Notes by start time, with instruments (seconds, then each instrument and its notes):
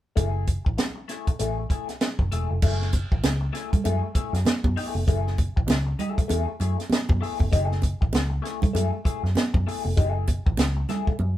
0.16 picked electric bass F#1, clean electric guitar A3 E4 G#4, kick, closed hi-hat
0.47 kick, closed hi-hat
0.65 picked electric bass A1, muted clean electric guitar stroke, kick
0.78 muted clean electric guitar stroke, snare, closed hi-hat
0.96 muted clean electric guitar stroke
1.08 clean electric guitar A3 E4 G#4, snare, closed hi-hat
1.27 muted clean electric guitar stroke, kick, closed hi-hat
1.39 picked electric bass A1, clean electric guitar A3 E4 G#4, closed hi-hat
1.58 muted clean electric guitar stroke
1.70 clean electric guitar A3 E4 G#4, kick, closed hi-hat
1.89 muted clean electric guitar stroke, snare, closed hi-hat
2.01 snare, closed hi-hat
2.19 picked electric bass F#1, muted clean electric guitar stroke, kick
2.32 picked electric bass E1, clean electric guitar A3 E4 G#4, closed hi-hat
2.51 picked electric bass F1, muted clean electric guitar stroke
2.62 picked electric bass F#1, clean electric guitar A3 E4 G#4, kick, crash
2.82 snare
2.93 kick, closed hi-hat, muted conga
3.12 picked electric bass A1, muted clean electric guitar stroke, kick
3.24 picked electric bass C#2, muted clean electric guitar stroke, snare, closed hi-hat, high conga
3.41 muted clean electric guitar stroke
3.53 clean electric guitar A3 E4 G#4, snare, closed hi-hat
3.72 muted clean electric guitar stroke, kick, closed hi-hat, low conga
3.84 picked electric bass F#2, clean electric guitar A3 E4 G#4, closed hi-hat, muted conga
4.03 muted clean electric guitar stroke
4.15 clean electric guitar A3 E4 G#4, muted picked electric bass stroke, kick, closed hi-hat, muted conga
4.33 picked electric bass F#2, muted clean electric guitar stroke, snare, closed hi-hat
4.45 snare, closed hi-hat, high conga
4.64 picked electric bass F#2, muted clean electric guitar stroke, kick, high conga
4.76 clean electric guitar A3 E4 G#4, open hi-hat
4.95 picked electric bass F1, muted clean electric guitar stroke, high conga
5.07 picked electric bass F#1, clean electric guitar A3 E4 G#4, kick, closed hi-hat
5.27 snare
5.38 kick, closed hi-hat, muted conga
5.56 picked electric bass A1, muted clean electric guitar stroke, kick
5.68 picked electric bass C#2, muted clean electric guitar stroke, snare, closed hi-hat, high conga
5.87 muted clean electric guitar stroke
5.99 clean electric guitar A3 E4 G#4, closed hi-hat, low conga
6.17 muted clean electric guitar stroke, kick, closed hi-hat
6.28 picked electric bass E2, clean electric guitar A3 E4 G#4, closed hi-hat, muted conga
6.48 muted clean electric guitar stroke
6.60 picked electric bass F#2, clean electric guitar A3 E4 G#4, closed hi-hat, muted conga
6.78 muted clean electric guitar stroke, snare, closed hi-hat
6.90 snare, closed hi-hat, high conga
7.09 picked electric bass F#2, muted clean electric guitar stroke, kick, high conga
7.21 clean electric guitar A3 E4 G#4, open hi-hat
7.39 picked electric bass F1, muted clean electric guitar stroke, kick, high conga
7.52 picked electric bass F#1, clean electric guitar G#3 D#4 G4, kick, closed hi-hat
7.64 clean electric guitar A3 E4 G#4
7.72 snare
7.82 kick, closed hi-hat, muted conga
8.01 picked electric bass A1, muted clean electric guitar stroke, kick
8.13 picked electric bass C#2, muted clean electric guitar stroke, snare, closed hi-hat, high conga
8.30 muted clean electric guitar stroke
8.42 clean electric guitar A3 E4 G#4, snare, closed hi-hat
8.61 muted clean electric guitar stroke, kick, closed hi-hat, low conga
8.73 picked electric bass F#2, clean electric guitar A3 E4 G#4, closed hi-hat, muted conga
8.92 muted clean electric guitar stroke
9.05 clean electric guitar A3 E4 G#4, muted picked electric bass stroke, kick, closed hi-hat
9.24 picked electric bass F#2, muted clean electric guitar stroke, snare
9.35 snare, closed hi-hat, high conga
9.54 picked electric bass F#2, muted clean electric guitar stroke, kick, high conga
9.67 clean electric guitar A3 E4 G#4, open hi-hat
9.85 picked electric bass F1, muted clean electric guitar stroke, high conga
9.97 picked electric bass F#1, clean electric guitar G#3 D#4 G4, kick, closed hi-hat
10.09 clean electric guitar A3 E4 G#4
10.28 kick, closed hi-hat, muted conga
10.46 picked electric bass A1, muted clean electric guitar stroke, kick
10.57 picked electric bass C#2, muted clean electric guitar stroke, snare, closed hi-hat, high conga
10.77 muted clean electric guitar stroke
10.89 clean electric guitar A3 E4 G#4, snare, closed hi-hat, low conga
11.07 muted clean electric guitar stroke, kick
11.19 picked electric bass F#2, muted clean electric guitar stroke, muted conga